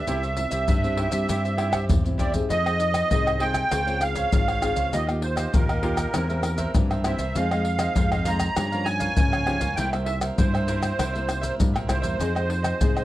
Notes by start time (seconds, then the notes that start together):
Already playing: E5
0.07 C2 C3 C4 E4 G4 C5 E5, pandeiro, maracas, surdo
0.22 G4 C5 E5, pandeiro, maracas
0.37 C4 E4 G4, muted cavaquinho stroke, pandeiro, maracas
0.51 C2 G4 C5 E5, pandeiro, maracas
0.68 G2, pandeiro, maracas, surdo
0.83 C4 E4 G4 C5 E5, pandeiro, maracas, surdo
0.97 E4 G4 C5 E5, pandeiro
1.11 G2 C4 E4 G4 C5 E5, pandeiro, maracas, surdo
1.28 G2 C3 E4 G4 C5 E5, pandeiro, maracas, surdo
1.44 G4 C5 E5, pandeiro, maracas
1.57 C4 E4 G4 C5 E5, pandeiro, tamborim
1.72 G4 C5 E5, pandeiro, tamborim, maracas, surdo
1.89 E2 G2, surdo, pandeiro, maracas
2.05 C4 E4 G4, muted cavaquinho stroke, pandeiro, maracas
2.18 E4 G4 C5 D5 E5, pandeiro, maracas, surdo
2.32 C4 D#4 G4 G#4 C5 E5, pandeiro, maracas, surdo
2.49 F2 F3 F4 G#4 C5 D#5, pandeiro, maracas, surdo
2.65 C4 D#4 G#4 C5 D#5, pandeiro, tamborim, maracas
2.78 muted cavaquinho stroke, pandeiro, maracas
2.93 G#4 C5 D#5, pandeiro, tamborim, maracas
3.10 C2 C3 C4 D#4 F4 G#4 C5 D#5, pandeiro, maracas, surdo
3.25 G#4 C5 D#5, pandeiro, tamborim, maracas, surdo
3.39 C4 D#4 F4 G#4 C5 D#5 G5, pandeiro
3.54 pandeiro, tamborim, maracas, surdo
3.71 C#2 C#3 C4 F4 G#4 C5 C#5 F5, pandeiro, tamborim, maracas, surdo
3.86 C4 F4 G#4 C5 C#5 F5, pandeiro, maracas
4.00 F5, muted cavaquinho stroke, pandeiro, tamborim, maracas
4.15 C5 C#5 F5, pandeiro, maracas, surdo
4.32 G#1 G#2 C4 F4 G#4, pandeiro, maracas, surdo
4.47 C5 C#5 F5, pandeiro, tamborim, maracas
4.61 C4 F4 G#4 C5 C#5 F5, pandeiro, tamborim, maracas
4.75 C#2 C5 C#5 F5, pandeiro, maracas, surdo
4.91 D#2 D#3 A#3 F4 G4 D#5 F5, pandeiro, maracas, surdo
5.07 A#3 F4 G4 D#5 F5, pandeiro, tamborim, maracas
5.22 C5, muted cavaquinho stroke, pandeiro
5.36 G4 D#5 F5, pandeiro, tamborim, maracas
5.53 D#2 A#2 A#3 F4 G4 A#4 D#5 F5, pandeiro, maracas, surdo
5.68 G4 D#5 F5, pandeiro, tamborim, maracas, surdo
5.83 A#3 F4 G4 D#5 F5, pandeiro
5.97 pandeiro, tamborim, maracas, surdo
6.14 E2 E3 A#3 C4 E4 G4 A#4 C5 E5, pandeiro, tamborim, maracas, surdo
6.29 A#3 C4 G4 A#4 C5 E5, pandeiro, maracas
6.43 muted cavaquinho stroke, pandeiro, tamborim, maracas
6.58 A#4 C5 E5, pandeiro, maracas, surdo
6.74 G2 E3 A#3 C4 G4, pandeiro, maracas, surdo
6.90 A#4 C5 E5, pandeiro, tamborim, maracas
7.04 A#3 C4 E4 G4 A#4 C5 E5, pandeiro, tamborim, maracas
7.18 C2 A#4 C5 E5, pandeiro, maracas, surdo
7.35 F2 D#3 G#3 C4 F4 G#4 C5 D#5 F5, pandeiro, maracas, surdo
7.51 D#3 G#3 C4 G#4 C5 D#5, pandeiro, tamborim, maracas
7.65 muted cavaquinho stroke, pandeiro
7.79 G#4 C5 D#5, pandeiro, tamborim, maracas
7.95 F2 C3 D#3 G#3 C4 F4 G#4 C5 D#5, pandeiro, maracas, surdo
8.12 G#4 C5 D#5, pandeiro, tamborim, maracas, surdo
8.25 D#3 G#3 C4 F4 G#4 C5 D#5 A#5, pandeiro, maracas
8.39 pandeiro, tamborim, maracas, surdo
8.56 G2 F3 A#3 C#4 G4 A#4 C#5 F5, pandeiro, tamborim, maracas, surdo
8.72 F3 A#3 C#4 A#4 C#5 F5, pandeiro, maracas
8.84 G#5, pandeiro, tamborim
9.00 A#4 C#5 F5, pandeiro, maracas, surdo
9.17 G2 C#3 F3 A#3 C#4, pandeiro, maracas, surdo
9.32 A#4 C#5 F5, pandeiro, tamborim, maracas
9.45 F3 A#3 C#4 G4 A#4 C#5 F5, pandeiro, tamborim, surdo
9.60 C#2 A#4 C#5 F5, pandeiro, maracas, surdo
9.76 C2 C3 G3 A#3 E4 A#4 C5 E5 G5, pandeiro, maracas, surdo
9.93 G3 A#3 E4 A#4 C5 E5, pandeiro, tamborim, maracas
10.05 E5, muted cavaquinho stroke, pandeiro
10.21 A#4 C5 E5, pandeiro, tamborim, maracas
10.37 G2 G3 A#3 E4 A#4 C5 E5, pandeiro, maracas, surdo
10.53 A#4 C5 E5, pandeiro, tamborim, maracas, surdo
10.68 G3 A#3 E4 A#4 C5 E5, pandeiro, maracas
10.82 pandeiro, tamborim, maracas, surdo
10.98 C2 C3 E4 A#4 C5 E5, pandeiro, tamborim, maracas, surdo
11.13 G3 A#3 E4 A#4 C5 E5, pandeiro, maracas
11.28 muted cavaquinho stroke, pandeiro, tamborim, maracas
11.41 A#4 C5 E5, pandeiro, maracas, surdo
11.59 G2 G3 A#3 E4, pandeiro, maracas, surdo
11.74 A#1 A#4 C5 E5, pandeiro, tamborim, maracas
11.87 C2 G3 A#3 E4 A#4 C5 E5, pandeiro, tamborim, maracas, surdo
12.02 E2 A#4 C5 E5, pandeiro, maracas, surdo
12.19 F2 F3 C4 D#4 F4 G#4 C5 D#5, pandeiro, maracas, surdo
12.35 C4 D#4 G#4 C5 D#5, pandeiro, tamborim, maracas
12.50 muted cavaquinho stroke, pandeiro
12.63 G#4 C5 D#5, pandeiro, tamborim, maracas
12.80 C2 C3 C4 D#4 F4 G#4 C5 D#5, pandeiro, maracas, surdo
12.95 G#4 C5 D#5, pandeiro, tamborim, maracas, surdo